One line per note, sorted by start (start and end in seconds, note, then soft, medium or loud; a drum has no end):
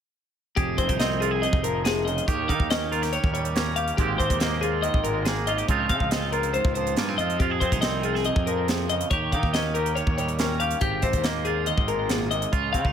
0.56 0.76 F1 medium
0.56 2.28 F2 medium
0.56 0.78 G4 medium
0.56 1.21 G#4 medium
0.56 kick medium
0.56 closed hi-hat soft
0.78 0.87 F1 medium
0.78 0.89 C4 medium
0.78 0.99 C5 medium
0.78 kick medium
0.78 closed hi-hat medium
0.89 1.46 C2 medium
0.89 2.28 D#4 soft
0.89 kick medium
0.89 closed hi-hat medium
0.99 2.25 C4 medium
0.99 1.21 D#5 medium
0.99 snare loud
0.99 closed hi-hat medium
1.20 1.31 F4 soft
1.20 1.42 G#4 medium
1.20 closed hi-hat medium
1.31 2.27 G#4 soft
1.42 1.64 C3 medium
1.42 1.63 D#5 medium
1.42 closed hi-hat medium
1.53 2.20 F1 medium
1.53 kick loud
1.63 2.28 F3 medium
1.63 1.84 A#4 medium
1.63 closed hi-hat medium
1.85 2.06 C3 medium
1.85 2.06 G#4 medium
1.85 snare loud
1.85 closed hi-hat medium
2.05 2.27 C#3 medium
2.05 2.27 D#5 medium
2.05 closed hi-hat medium
2.18 closed hi-hat medium
2.27 2.50 D#2 loud
2.27 3.12 D#3 medium
2.27 2.91 G4 medium
2.27 2.48 C#5 medium
2.27 kick medium
2.27 closed hi-hat medium
2.48 2.58 D#3 medium
2.48 4.00 D#4 medium
2.48 2.70 F5 medium
2.48 kick medium
2.48 closed hi-hat medium
2.60 3.17 D#2 medium
2.60 kick medium
2.70 3.55 C#4 medium
2.70 2.92 D#5 medium
2.70 snare loud
2.70 closed hi-hat medium
2.91 3.02 F4 medium
2.91 3.12 A#4 medium
2.91 closed hi-hat medium
3.02 3.76 G4 soft
3.02 snare soft
3.02 closed hi-hat medium
3.13 3.96 D#3 medium
3.13 3.32 C#5 medium
3.13 closed hi-hat medium
3.23 3.91 D#2 medium
3.23 kick loud
3.33 3.95 G3 medium
3.33 3.55 C#5 medium
3.33 closed hi-hat medium
3.45 closed hi-hat medium
3.55 3.96 C#4 medium
3.55 3.77 A#4 medium
3.55 snare loud
3.55 closed hi-hat medium
3.76 3.96 G4 medium
3.76 3.98 F5 medium
3.76 closed hi-hat medium
3.88 closed hi-hat medium
3.97 4.17 G#1 medium
3.97 5.66 G#2 medium
3.97 5.06 G#3 medium
3.97 4.41 A#3 medium
3.97 4.19 C4 medium
3.97 4.19 G4 medium
3.97 kick medium
3.97 closed hi-hat soft
4.01 4.63 G4 medium
4.18 4.29 G#1 loud
4.18 5.70 C4 soft
4.18 4.40 C5 medium
4.18 kick medium
4.18 closed hi-hat medium
4.30 4.88 D#2 medium
4.30 kick medium
4.30 closed hi-hat medium
4.40 5.27 A#3 medium
4.40 4.62 D#5 medium
4.40 snare loud
4.40 closed hi-hat medium
4.61 5.47 F4 soft
4.61 4.83 G#4 medium
4.61 closed hi-hat medium
4.82 5.67 D#3 medium
4.82 5.04 D#5 medium
4.82 closed hi-hat medium
4.94 5.61 G#1 medium
4.94 kick medium
5.04 5.69 G#3 medium
5.04 5.25 A#4 medium
5.04 closed hi-hat medium
5.25 5.69 A#3 medium
5.25 5.47 G#4 medium
5.25 snare medium
5.25 closed hi-hat medium
5.47 5.58 F4 medium
5.47 5.68 D#5 medium
5.47 closed hi-hat medium
5.58 5.69 G4 soft
5.58 closed hi-hat medium
5.68 5.91 C#2 loud
5.68 6.54 C#3 medium
5.68 6.76 F3 medium
5.68 6.11 C4 medium
5.68 5.89 D#4 medium
5.68 6.33 F4 medium
5.68 5.89 C#5 medium
5.68 kick medium
5.68 closed hi-hat medium
5.89 6.00 C#3 medium
5.89 7.44 D#4 medium
5.89 6.11 F5 medium
5.89 kick medium
5.89 closed hi-hat medium
6.00 6.58 C#2 medium
6.00 kick medium
6.11 6.97 C4 medium
6.11 6.33 D#5 medium
6.11 snare loud
6.11 closed hi-hat medium
6.32 7.18 F4 medium
6.32 6.53 A#4 medium
6.32 closed hi-hat medium
6.43 closed hi-hat medium
6.53 7.38 G#2 medium
6.53 6.74 C5 medium
6.53 closed hi-hat medium
6.64 6.93 C#2 medium
6.64 kick medium
6.75 8.47 F3 medium
6.75 6.96 C5 medium
6.75 closed hi-hat medium
6.87 closed hi-hat medium
6.96 7.16 G2 medium
6.96 7.09 A#3 medium
6.96 7.18 G#4 medium
6.96 snare loud
6.96 closed hi-hat soft
7.09 7.40 C4 soft
7.18 7.37 F2 medium
7.18 7.40 F4 medium
7.18 7.39 D#5 medium
7.18 closed hi-hat medium
7.30 closed hi-hat soft
7.39 7.59 F2 medium
7.39 9.11 F2 medium
7.39 7.51 F4 medium
7.39 7.61 G4 medium
7.39 kick medium
7.39 closed hi-hat soft
7.51 8.04 G#4 medium
7.60 7.71 F2 medium
7.60 7.72 C4 medium
7.60 7.81 C5 medium
7.60 kick medium
7.60 closed hi-hat medium
7.72 8.29 C2 medium
7.72 9.11 D#4 soft
7.72 kick medium
7.72 closed hi-hat medium
7.81 9.09 C4 medium
7.81 8.03 D#5 medium
7.81 snare loud
7.81 closed hi-hat medium
8.03 8.15 F4 medium
8.03 8.25 G#4 medium
8.03 closed hi-hat medium
8.15 9.11 G#4 soft
8.15 snare soft
8.24 8.47 C3 medium
8.24 8.47 D#5 medium
8.24 closed hi-hat medium
8.36 9.03 F2 medium
8.36 kick medium
8.46 9.11 F3 medium
8.46 8.68 A#4 medium
8.46 closed hi-hat medium
8.68 8.90 C3 medium
8.68 8.89 G#4 medium
8.68 snare loud
8.68 closed hi-hat medium
8.89 9.12 C#3 medium
8.89 9.10 D#5 medium
8.89 closed hi-hat medium
9.01 closed hi-hat medium
9.10 9.34 D#2 medium
9.10 9.95 D#3 medium
9.10 9.76 G4 medium
9.10 9.32 C#5 medium
9.10 kick medium
9.10 closed hi-hat soft
9.32 9.42 D#3 medium
9.32 11.03 D#4 medium
9.32 9.53 F5 medium
9.32 kick medium
9.32 closed hi-hat medium
9.43 10.00 D#2 medium
9.43 kick medium
9.53 10.39 C#4 medium
9.53 9.75 D#5 medium
9.53 snare loud
9.53 closed hi-hat medium
9.74 10.60 G4 soft
9.74 9.95 A#4 medium
9.74 closed hi-hat medium
9.86 closed hi-hat medium
9.95 10.79 D#3 medium
9.95 10.16 C#5 medium
9.95 closed hi-hat medium
10.06 10.74 D#2 medium
10.06 kick loud
10.18 10.79 G3 medium
10.18 10.39 C#5 medium
10.18 closed hi-hat medium
10.28 closed hi-hat medium
10.39 10.79 C#4 medium
10.39 10.60 A#4 medium
10.39 snare loud
10.39 closed hi-hat medium
10.60 10.79 G4 medium
10.60 10.81 F5 medium
10.60 closed hi-hat medium
10.71 closed hi-hat medium
10.81 11.00 G#1 medium
10.81 12.08 G#2 medium
10.81 11.02 G4 medium
10.81 11.46 G4 medium
10.81 kick medium
10.81 closed hi-hat medium
11.02 11.12 G#1 medium
11.02 12.73 C4 medium
11.02 11.24 C5 medium
11.02 kick medium
11.02 closed hi-hat medium
11.13 11.71 D#2 medium
11.13 kick medium
11.13 closed hi-hat medium
11.24 12.52 A#3 soft
11.24 11.45 D#5 medium
11.24 snare loud
11.24 closed hi-hat medium
11.45 12.51 F4 medium
11.45 11.66 G#4 medium
11.45 closed hi-hat medium
11.66 12.30 D#3 medium
11.66 11.88 D#5 medium
11.66 closed hi-hat medium
11.77 12.44 G#1 medium
11.77 kick medium
11.88 12.93 G#3 medium
11.88 12.10 A#4 medium
11.88 closed hi-hat medium
12.09 12.30 A#2 medium
12.09 12.31 G#4 medium
12.09 snare loud
12.09 closed hi-hat medium
12.30 12.52 C3 medium
12.30 12.52 D#5 medium
12.30 closed hi-hat medium
12.42 closed hi-hat medium
12.52 12.76 C#2 loud
12.52 12.93 C#3 medium
12.52 12.93 F4 medium
12.52 12.72 C#5 medium
12.52 kick medium
12.52 closed hi-hat soft
12.73 12.84 C#3 medium
12.73 12.85 C4 medium
12.73 12.93 F5 medium
12.73 kick medium
12.73 closed hi-hat medium
12.85 12.93 C#2 medium
12.85 12.93 D#4 soft
12.85 kick medium